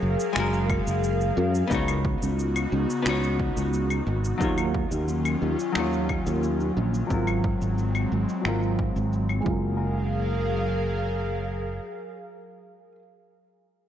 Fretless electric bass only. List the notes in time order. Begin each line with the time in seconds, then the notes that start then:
0.02 F#1
0.36 F#1
0.87 F#1
1.37 F#2
1.71 C#2
2.22 C#2
2.72 C#2
3.06 C#2
3.57 C#2
4.07 G#1
4.41 D#2
4.91 D#2
5.42 D#2
5.75 D#2
6.27 D#2
6.77 A#1
7.10 G#1
7.62 G#1
8.12 G#1
8.45 G#1
8.96 G#1
9.46 F#1